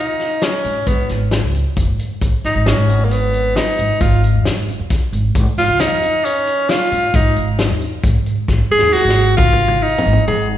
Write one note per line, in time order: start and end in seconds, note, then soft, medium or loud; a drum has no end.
0.00 0.45 D#4 medium
0.19 snare soft
0.19 closed hi-hat soft
0.42 0.89 C#4 medium
0.42 snare loud
0.42 closed hi-hat medium
0.64 0.85 G#2 medium
0.64 closed hi-hat medium
0.87 1.07 G#2 medium
0.87 1.10 B3 medium
0.87 kick medium
0.87 closed hi-hat medium
1.09 1.40 G#1 medium
1.09 snare soft
1.09 closed hi-hat medium
1.31 snare medium
1.31 closed hi-hat medium
1.43 1.63 C#2 medium
1.55 closed hi-hat medium
1.77 1.87 F#1 medium
1.77 kick medium
1.77 closed hi-hat medium
1.88 2.08 G#2 medium
1.99 closed hi-hat medium
2.22 2.32 G#1 medium
2.22 kick medium
2.22 closed hi-hat medium
2.44 2.54 G#1 medium
2.44 2.69 D#4 medium
2.44 snare soft
2.44 closed hi-hat soft
2.56 2.75 G#1 medium
2.66 3.06 C#4 medium
2.66 snare loud
2.66 closed hi-hat medium
2.78 3.57 G#1 medium
2.89 closed hi-hat medium
3.05 3.13 A#3 medium
3.11 3.58 B3 medium
3.11 closed hi-hat medium
3.34 closed hi-hat soft
3.56 4.02 D#4 medium
3.56 snare loud
3.56 closed hi-hat medium
3.78 3.89 G#1 medium
3.78 closed hi-hat medium
4.01 4.36 G#1 medium
4.01 4.23 F4 medium
4.01 kick medium
4.01 closed hi-hat medium
4.23 closed hi-hat medium
4.35 4.45 F2 medium
4.45 snare loud
4.45 closed hi-hat medium
4.57 4.67 G#1 medium
4.68 closed hi-hat medium
4.80 4.99 F2 medium
4.90 kick medium
4.90 snare soft
4.90 closed hi-hat medium
5.13 5.33 G#1 medium
5.13 closed hi-hat medium
5.35 5.45 G#1 medium
5.35 kick medium
5.35 closed hi-hat medium
5.35 shaker soft
5.58 5.67 G#1 medium
5.58 5.81 F4 loud
5.58 snare soft
5.58 closed hi-hat medium
5.68 5.91 C#2 medium
5.80 6.26 D#4 medium
5.80 snare medium
5.80 closed hi-hat medium
5.91 6.11 F2 loud
6.03 closed hi-hat medium
6.24 6.71 C#4 medium
6.24 closed hi-hat medium
6.47 closed hi-hat medium
6.47 shaker soft
6.69 7.17 F4 medium
6.69 snare loud
6.69 closed hi-hat medium
6.91 7.12 G#2 medium
6.91 closed hi-hat soft
6.91 shaker soft
7.14 7.34 G#2 medium
7.14 7.37 D#4 medium
7.14 kick loud
7.14 closed hi-hat medium
7.14 shaker soft
7.36 7.67 G#1 medium
7.36 closed hi-hat medium
7.59 snare loud
7.59 closed hi-hat medium
7.71 7.90 D#2 medium
7.81 closed hi-hat medium
8.04 8.14 G#1 medium
8.04 kick medium
8.04 closed hi-hat medium
8.15 8.35 G#2 medium
8.26 closed hi-hat medium
8.48 8.59 G#1 medium
8.48 kick medium
8.48 snare soft
8.48 shaker medium
8.71 8.81 G#1 medium
8.71 8.94 G#4 loud
8.79 9.02 D#2 medium
8.79 snare medium
8.93 9.36 F#4 medium
8.93 snare soft
8.93 shaker soft
9.05 9.85 G#1 medium
9.05 snare medium
9.17 shaker soft
9.37 9.84 F4 loud
9.37 kick loud
9.37 high tom medium
9.53 high tom medium
9.68 high tom medium
9.82 10.27 D#4 medium
9.98 mid tom medium
10.06 10.16 G#1 medium
10.06 shaker soft
10.13 mid tom medium
10.27 10.58 G#1 medium
10.27 10.49 G#4 medium
10.27 mid tom medium